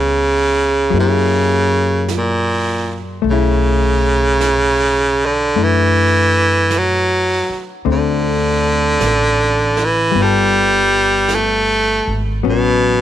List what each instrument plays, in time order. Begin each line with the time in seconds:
Already playing: upright bass C#2, baritone saxophone C#3, hollow-body jazz guitar G3 B3 E4
0.90 upright bass F#2, hollow-body jazz guitar F#3, brush sweep
0.95 hollow-body jazz guitar A#3 E4
1.00 baritone saxophone C#3, hollow-body jazz guitar G4
2.09 brush sweep, snare, hi-hat pedal
2.17 baritone saxophone A#2
3.22 upright bass B1, hollow-body jazz guitar A3, brush sweep
3.30 baritone saxophone C#3, hollow-body jazz guitar E4
4.41 brush sweep, snare, hi-hat pedal
5.26 baritone saxophone D3
5.54 upright bass F#2, hollow-body jazz guitar A3 D4, brush sweep
5.58 hollow-body jazz guitar E4
5.63 baritone saxophone E3
6.71 brush sweep, snare, hi-hat pedal
6.78 baritone saxophone F#3
7.49 muted upright bass stroke
7.85 upright bass D2, hollow-body jazz guitar D3 A3 C4, brush sweep
7.91 baritone saxophone D3
9.00 upright bass A1, brush sweep, snare, hi-hat pedal
9.77 snare
9.85 baritone saxophone E3
10.12 upright bass G1, hollow-body jazz guitar G3, brush sweep
10.16 hollow-body jazz guitar B3
10.20 baritone saxophone G3, hollow-body jazz guitar F4 A4
11.29 brush sweep, snare, hi-hat pedal
11.35 baritone saxophone A3
12.07 upright bass G#1
12.43 upright bass A1, hollow-body jazz guitar F#3 B3 C#4, brush sweep
12.49 baritone saxophone B2